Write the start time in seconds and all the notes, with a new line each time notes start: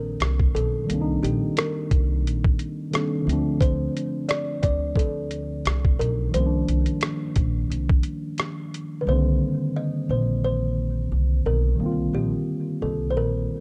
Already playing: A#1 D#3 G3 A#3 C4 D4 A#4
0.20 C2, cross-stick, closed hi-hat
0.40 kick
0.55 B1 A4, closed hi-hat
0.85 C2 D#3 G3
0.90 A#3 C4, closed hi-hat
0.95 D4
1.01 D#4
1.22 A#1 G4, closed hi-hat
1.57 A#4, cross-stick, closed hi-hat
1.91 C2, kick, closed hi-hat
2.24 A#1, closed hi-hat
2.44 kick
2.59 closed hi-hat
2.91 D#3 G3 A#3 C4 A4, cross-stick, closed hi-hat
2.96 D4
3.22 D3 F3
3.27 D2 A3 C4, closed hi-hat
3.33 D4
3.61 C5, kick, closed hi-hat
3.97 closed hi-hat
4.29 D5, cross-stick, closed hi-hat
4.63 D2 D5, kick, closed hi-hat
4.96 A4, kick, closed hi-hat
5.31 closed hi-hat
5.65 C2, cross-stick, closed hi-hat
5.85 kick
5.99 B1 A#4, closed hi-hat
6.29 D#3 F3
6.34 C2 G3 A#3 C5, closed hi-hat
6.40 C#4
6.46 D4
6.68 C2, closed hi-hat
6.86 closed hi-hat
7.01 cross-stick, closed hi-hat
7.36 A#1, kick, closed hi-hat
7.70 C2, closed hi-hat
7.89 kick
8.03 closed hi-hat
8.38 cross-stick, closed hi-hat
8.74 closed hi-hat
9.01 D3 B4
9.05 C2 D#3 G3 A#3 C5
9.10 D3 C4
9.76 D#5
10.09 A#1 C5
10.44 C5
11.12 C2
11.46 B1 A#4
11.75 D#3 G3
11.79 C2 A#3 C4
11.86 F4
12.13 A#1 G4
12.82 C2 A4
13.10 C5
13.16 A#1 A#4